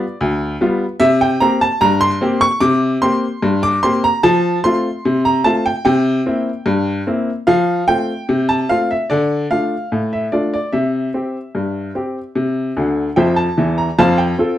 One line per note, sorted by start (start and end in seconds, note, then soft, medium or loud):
0.00 0.16 D5 loud
0.21 0.55 D2 loud
0.61 0.83 G3 medium
0.61 0.83 B3 medium
0.61 0.83 F4 medium
1.00 1.35 C3 loud
1.00 1.20 E5 loud
1.21 1.41 G5 loud
1.40 1.63 A#3 medium
1.40 1.64 C4 medium
1.40 1.64 G4 medium
1.40 1.61 A#5 loud
1.61 1.81 A5 loud
1.81 2.16 G2 loud
1.81 2.01 A#5 loud
2.01 2.39 C6 loud
2.21 2.43 A#3 medium
2.21 2.44 C4 medium
2.21 2.44 G4 medium
2.41 2.61 C#6 loud
2.60 2.96 C3 loud
2.60 2.99 D6 loud
3.02 3.25 A#3 medium
3.02 3.25 C4 medium
3.02 3.25 G4 medium
3.02 3.60 C6 loud
3.42 3.77 G2 loud
3.63 3.83 D6 loud
3.83 4.06 A#3 medium
3.83 4.06 C4 medium
3.83 4.06 G4 medium
3.83 4.03 C6 loud
4.04 4.24 A#5 loud
4.23 4.58 F3 loud
4.23 4.62 A5 loud
4.64 4.87 A3 medium
4.64 4.87 C4 medium
4.64 4.87 F4 medium
4.64 5.21 C6 loud
5.05 5.39 C3 medium
5.25 5.45 A#5 loud
5.44 5.67 A3 medium
5.44 5.67 C4 medium
5.44 5.68 F4 medium
5.44 5.65 A5 loud
5.66 5.83 G5 loud
5.85 6.20 C3 loud
5.85 7.03 G5 loud
6.26 6.48 A#3 medium
6.26 6.49 C4 medium
6.26 6.49 E4 medium
6.66 7.00 G2 loud
7.07 7.29 A#3 medium
7.07 7.29 C4 medium
7.07 7.30 E4 medium
7.47 7.82 F3 loud
7.47 7.86 F5 loud
7.88 8.11 A3 medium
7.88 8.11 C4 medium
7.88 8.11 F4 medium
7.88 8.46 G5 loud
8.29 8.63 C3 medium
8.49 8.69 A5 loud
8.69 8.92 A3 medium
8.69 8.92 C4 soft
8.69 8.93 F4 medium
8.69 8.90 F5 loud
8.91 9.10 E5 medium
9.10 9.45 D3 loud
9.10 9.48 D5 medium
9.51 9.73 A3 medium
9.51 9.73 D4 soft
9.51 9.74 F4 medium
9.51 9.99 F5 medium
9.92 10.26 A2 medium
10.13 10.32 E5 medium
10.32 10.55 A3 medium
10.32 10.55 D4 soft
10.32 10.55 F4 soft
10.32 10.52 D5 medium
10.54 10.73 D5 medium
10.73 11.08 C3 medium
10.73 13.13 E5 medium
11.14 11.36 C4 medium
11.14 11.37 G4 soft
11.55 11.89 G2 medium
11.95 12.18 C4 soft
11.95 12.18 G4 medium
12.35 12.70 C3 medium
12.77 13.07 D2 medium
12.77 13.07 D3 medium
13.16 13.48 F2 medium
13.16 13.48 F3 medium
13.16 13.36 C5 medium
13.16 13.36 E5 medium
13.16 13.37 G5 medium
13.36 13.76 A5 medium
13.58 13.88 E2 medium
13.58 13.88 E3 medium
13.78 13.98 A#5 medium
13.99 14.33 F2 loud
13.99 14.33 F3 medium
13.99 14.18 C5 medium
13.99 14.18 F5 loud
13.99 14.19 A5 loud
14.18 14.57 G5 medium
14.39 14.58 C4 medium
14.39 14.58 F4 medium
14.39 14.58 A4 medium